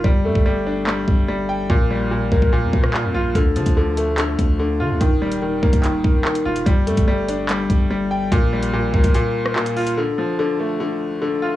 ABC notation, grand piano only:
X:1
M:4/4
L:1/8
Q:1/4=145
K:Dphr
V:1 name="Grand piano" clef=bass
G, A, G, D G,2 G, g | B,, G, B,, B, B,,2 B,, F | D, F, D, A, D,2 D, F | E, G, E, B, E,2 E, F |
G, A, G, D G,2 G, g | B,, G, B,, B, B,,2 B,, F | D, F, D, A, D,2 D, F |]